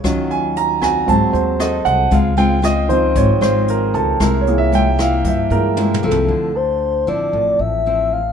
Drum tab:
HH |x--x--x--x--x--x--x--x--|x--x--x--x--x--x--x--x--|x--x--x--x--x--x--------|------------------------|
SD |r--------r--------r-----|------r--------r--------|r--------r--------------|------------------------|
T1 |------------------------|------------------------|------------------o-----|------------------------|
T2 |------------------------|------------------------|--------------------o---|------------------------|
FT |------------------------|------------------------|----------------------o-|------------------------|
BD |o--------o--o--------o--|o--------o--o--------o--|o--------o--o-----------|------------------------|